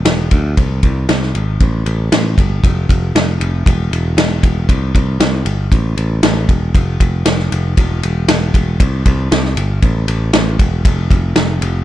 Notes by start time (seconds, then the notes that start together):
0.05 E1, snare, ride
0.31 D2, kick, ride
0.57 C2, kick, ride
0.83 C2, kick, ride
1.09 C2, snare, ride
1.22 snare
1.35 G#1, ride
1.60 A1, kick, ride
1.86 A1, ride
2.12 A1, snare, ride
2.38 G1, kick, ride
2.63 F1, kick, ride
2.89 F1, kick, ride
3.15 F1, snare, ride
3.40 F1, ride
3.66 E1, kick, ride
3.91 E1, ride
4.17 E1, snare, ride
4.43 E1, kick, ride
4.69 C2, kick, ride
4.95 C2, kick, ride
5.20 C2, snare, ride
5.45 G1, ride
5.72 A1, kick, ride
5.97 A1, ride
6.23 A1, snare, ride
6.49 E1, kick, ride
6.74 F1, kick, ride
7.00 F1, kick, ride
7.26 F1, snare, ride
7.39 snare
7.52 F1, ride
7.77 E1, kick, ride
8.03 E1, ride
8.28 E1, snare, ride
8.54 E1, kick, ride
8.80 C2, kick, ride
9.06 C2, kick, ride
9.31 C2, snare, ride
9.45 snare
9.56 G1, ride
9.82 A1, kick, ride
10.08 A1, ride
10.33 A1, snare, ride
10.59 E1, kick, ride
10.85 F1, kick, ride
11.10 F1, kick, ride
11.36 F1, snare, ride
11.61 F1, ride